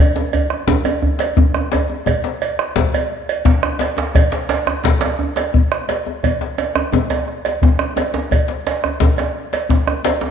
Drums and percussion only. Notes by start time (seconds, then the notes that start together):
0.16 djembe slap, djembe tone
0.33 cowbell, djembe bass
0.50 bombo rim
0.67 bombo low, djembe slap, djembe bass
0.85 cowbell, djembe tone
1.02 djembe bass
1.19 cowbell, djembe slap
1.37 bombo low, djembe bass
1.54 bombo rim, djembe tone
1.72 cowbell, djembe slap, djembe bass
1.90 djembe slap, djembe tone
2.06 bombo low, cowbell, djembe slap, djembe bass
2.24 djembe slap
2.42 cowbell
2.59 bombo rim
2.76 bombo low, djembe slap, djembe bass
2.94 cowbell, djembe tone
3.29 cowbell
3.45 bombo low, djembe slap, djembe bass
3.63 bombo rim, djembe tone
3.79 djembe slap
3.81 cowbell, djembe slap
3.97 djembe slap, djembe tone
4.15 bombo low, cowbell, djembe slap, djembe tone, djembe bass
4.32 djembe slap
4.49 cowbell, djembe slap
4.67 bombo rim, djembe tone
4.84 bombo low, djembe slap, djembe bass
5.01 cowbell, djembe slap, djembe tone
5.19 djembe tone
5.36 cowbell, djembe slap
5.54 bombo low, djembe bass
5.72 bombo rim
5.89 cowbell, djembe slap
6.06 djembe slap, djembe tone
6.23 bombo low, cowbell, djembe bass
6.41 bombo rim, djembe slap
6.58 cowbell, djembe slap
6.75 bombo rim, djembe tone
6.92 bombo low, djembe slap, djembe tone, djembe bass
7.10 cowbell, djembe slap, djembe tone
7.28 bombo rim, djembe slap
7.45 bombo rim, cowbell, djembe slap
7.62 bombo low, djembe slap, djembe bass
7.79 bombo rim, djembe slap, djembe tone
7.96 cowbell, djembe slap, djembe tone
8.14 bombo rim, djembe slap, djembe tone
8.31 bombo low, cowbell, djembe slap, djembe bass
8.48 djembe slap
8.67 cowbell, djembe slap
8.84 bombo rim, djembe tone
9.00 bombo low, djembe slap, djembe tone, djembe bass
9.17 cowbell, djembe slap, djembe tone
9.53 cowbell, djembe slap
9.69 bombo low, djembe slap, djembe bass
9.87 bombo rim, djembe tone
10.05 cowbell, djembe slap, djembe tone
10.21 djembe slap, djembe tone